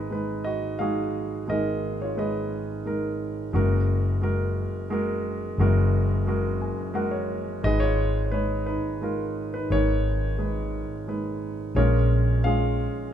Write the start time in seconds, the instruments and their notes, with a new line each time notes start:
Already playing: grand piano G#1 G#2 G#3 D#4 B4
0.10 grand piano G#3 D#4 B4
0.44 grand piano F#4 D#5
0.79 grand piano G#3 D#4 F#4 G#4 F5
1.48 grand piano G#1 G#2 G#3 D#4 G#4 A#4 D#5
2.02 grand piano F4 C#5
2.17 grand piano G#3 D#4 G#4 B4 D#5
2.85 grand piano G#3 D#4 A#4
3.53 fingered electric bass F#1, grand piano F#1 F#2 G#3 F#4 A#4
4.22 grand piano G#3 F#4 A#4
4.90 grand piano G#3 F#4 A#4
5.58 fingered electric bass F#1, grand piano F#1 F#2 G#3 F#4 A#4
6.27 grand piano G#3 F#4 A#4
6.61 grand piano G#5
6.94 grand piano G#3 F#4 A#4 F#5
7.11 grand piano C#5
7.63 fingered electric bass G#1, grand piano G#1 G#2 G#3 D#4 G#4 B4 D#5
7.80 grand piano F4 C#5
8.26 grand piano C#5
8.31 grand piano G#3 D#4 B4 C#5
8.66 grand piano D#4 B4
9.01 grand piano G#3 D#4 F4 A#4
9.54 grand piano D#4 B4
9.70 fingered electric bass G#1, grand piano G#1 G#2 G#3 D#4 G#4 A#4 C#5
10.38 grand piano G#3 D#4 B4
11.08 grand piano G#3 D#4 B4
11.75 fingered electric bass A#1, grand piano A#1 A#2 G#3 C#4 F4 G#4 A#4 C#5
12.44 grand piano G#3 C#4 F4 G#4 F5